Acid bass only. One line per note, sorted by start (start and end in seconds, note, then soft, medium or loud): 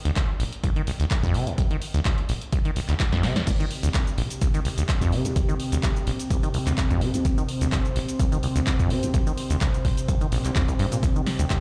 0.05 0.11 D2 loud
0.16 0.23 C2 medium
0.40 0.44 A#1 loud
0.63 0.70 C2 medium
0.76 0.82 D#3 medium
0.87 0.91 C2 medium
1.00 1.06 D2 loud
1.23 1.36 F2 loud
1.34 1.49 C3 medium
1.47 1.53 D#2 medium
1.58 1.62 C2 loud
1.71 1.77 D#3 medium
1.94 2.00 D2 loud
2.05 2.12 C2 medium
2.29 2.33 A#1 loud
2.52 2.59 C2 medium
2.65 2.71 D#3 medium
2.76 2.80 C2 medium
2.89 2.95 D2 loud
3.12 3.25 F2 loud
3.23 3.38 C3 medium
3.36 3.42 D#2 medium
3.47 3.51 C2 loud
3.60 3.66 D#3 medium
3.83 3.89 D2 loud
3.94 4.01 C2 medium
4.18 4.22 A#1 loud
4.41 4.48 C2 medium
4.54 4.60 D#3 medium
4.65 4.69 C2 medium
4.78 4.84 D2 loud
5.01 5.14 F2 loud
5.12 5.26 C3 medium
5.25 5.31 D#2 medium
5.36 5.40 C2 loud
5.49 5.55 D#3 medium
5.72 5.78 D2 loud
5.83 5.90 C2 medium
6.07 6.11 A#1 loud
6.30 6.37 C2 medium
6.43 6.49 D#3 medium
6.54 6.58 C2 medium
6.67 6.73 D2 loud
6.90 7.03 F2 loud
7.01 7.15 C3 medium
7.14 7.20 D#2 medium
7.25 7.29 C2 loud
7.38 7.44 D#3 medium
7.61 7.67 D2 loud
7.72 7.79 C2 medium
7.96 8.00 A#1 loud
8.19 8.26 C2 medium
8.32 8.38 D#3 medium
8.43 8.47 C2 medium
8.56 8.62 D2 loud
8.79 8.92 F2 loud
8.90 9.04 C3 medium
9.03 9.09 D#2 medium
9.14 9.18 C2 loud
9.27 9.33 D#3 medium
9.50 9.56 D2 loud
9.61 9.68 C2 medium
9.85 9.89 A#1 loud
10.08 10.15 C2 medium
10.21 10.27 D#3 medium
10.32 10.39 A#1 loud
10.45 10.51 C2 medium
10.56 10.63 D#2 loud
10.68 10.74 C2 medium
10.79 10.86 G2 loud
10.92 10.98 A#2 medium
11.03 11.07 C2 loud
11.16 11.22 D#3 medium
11.39 11.45 D2 loud
11.50 11.57 C2 medium